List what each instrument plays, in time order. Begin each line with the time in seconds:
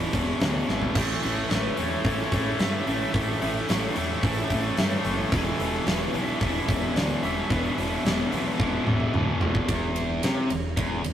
Already playing: overdriven electric guitar E2 B2 E3, distorted electric guitar E3 G3 B3 E4
0.13 fingered electric bass E1, overdriven electric guitar E2 B2 E3, kick, open hi-hat
0.40 fingered electric bass D2, overdriven electric guitar E2 B2 E3, snare, open hi-hat
0.69 fingered electric bass G#1, overdriven electric guitar E2 B2 E3, snare
0.82 floor tom
0.95 fingered electric bass A1, distorted electric guitar A2 E3 A3 C#4 E4, overdriven electric guitar A2 E3 A3, lead electric guitar A4, kick, open hi-hat, crash
1.22 fingered electric bass A1, overdriven electric guitar A2 E3 A3, open hi-hat
1.50 fingered electric bass A1, overdriven electric guitar A2 E3 A3, lead electric guitar B4, snare, open hi-hat
1.77 fingered electric bass E2, overdriven electric guitar A2 E3 A3, lead electric guitar C#5, open hi-hat
2.04 fingered electric bass A1, distorted electric guitar A2 E3 A3 C#4 E4, overdriven electric guitar A2 E3 A3, kick, open hi-hat
2.32 fingered electric bass A1, overdriven electric guitar A2 E3 A3, lead electric guitar C#5, kick, open hi-hat
2.59 fingered electric bass G2, overdriven electric guitar A2 E3 A3, lead electric guitar E5, snare, open hi-hat
2.87 fingered electric bass A1, overdriven electric guitar A2 E3 A3, lead electric guitar E5, open hi-hat
3.13 fingered electric bass A1, overdriven electric guitar A2 E3 A3, distorted electric guitar A2 E3 A3 C#4 E4, kick, open hi-hat
3.41 fingered electric bass A1, overdriven electric guitar A2 E3 A3, open hi-hat
3.68 fingered electric bass A1, overdriven electric guitar A2 E3 A3, snare, open hi-hat
3.94 fingered electric bass E2, overdriven electric guitar A2 E3 A3, open hi-hat
4.22 fingered electric bass A1, distorted electric guitar A2 E3 A3 C#4 E4, overdriven electric guitar A2 E3 A3, kick, open hi-hat
4.50 fingered electric bass A1, overdriven electric guitar A2 E3 A3, kick, open hi-hat
4.77 fingered electric bass G2, overdriven electric guitar A2 E3 A3, snare, open hi-hat
5.05 fingered electric bass F#1, overdriven electric guitar A2 E3 A3, open hi-hat
5.31 fingered electric bass E1, overdriven electric guitar E2 B2 E3, distorted electric guitar E3 G3 B3 E4, lead electric guitar A4, kick, open hi-hat
5.59 fingered electric bass E1, overdriven electric guitar E2 B2 E3, open hi-hat
5.86 fingered electric bass E1, overdriven electric guitar E2 B2 E3, lead electric guitar B4, snare, open hi-hat
6.13 fingered electric bass B1, overdriven electric guitar E2 B2 E3, open hi-hat
6.24 lead electric guitar E5
6.40 fingered electric bass E1, overdriven electric guitar E2 B2 E3, distorted electric guitar E3 G3 B3 E4, kick, open hi-hat
6.68 fingered electric bass E1, overdriven electric guitar E2 B2 E3, kick, open hi-hat
6.95 fingered electric bass D2, overdriven electric guitar E2 B2 E3, lead electric guitar D5, snare, open hi-hat
7.23 fingered electric bass E1, overdriven electric guitar E2 B2 E3, lead electric guitar E5, open hi-hat
7.50 fingered electric bass E1, overdriven electric guitar E2 B2 E3, distorted electric guitar E3 G3 B3 E4, kick, open hi-hat
7.78 fingered electric bass E1, overdriven electric guitar E2 B2 E3, open hi-hat
8.05 fingered electric bass E1, overdriven electric guitar E2 B2 E3, snare, open hi-hat
8.32 fingered electric bass B1, overdriven electric guitar E2 B2 E3, open hi-hat
8.58 fingered electric bass E1, overdriven electric guitar E2 B2 E3, distorted electric guitar E3 G3 B3 E4, kick
8.87 fingered electric bass E1, overdriven electric guitar E2 B2 E3, mid tom
9.00 mid tom
9.13 fingered electric bass D2, overdriven electric guitar E2 B2 E3, mid tom
9.41 fingered electric bass E1, overdriven electric guitar E2 B2 E3, floor tom
9.55 kick
9.68 fingered electric bass E1, distorted electric guitar E2, overdriven electric guitar E2, kick, ride
9.96 ride
10.23 fingered electric bass C2, distorted electric guitar C3, overdriven electric guitar C3, snare, ride
10.50 fingered electric bass E1, distorted electric guitar E2, overdriven electric guitar E2, ride
10.77 fingered electric bass E1, distorted electric guitar E2, overdriven electric guitar E2, kick, ride
11.04 fingered electric bass E1, overdriven electric guitar E2, distorted electric guitar E2, ride